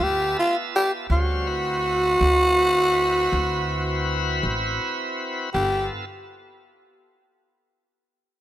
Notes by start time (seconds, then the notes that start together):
Already playing: B3 F4 E5 A5
0.00 D2 G4
0.39 F4
0.76 G4
1.10 D2 G3 C#4 F#4 C5 F5
1.47 C4 E4 F#4 B4
2.21 D2
3.32 D2
4.43 A1
5.54 G1 B3 F4 G4 A4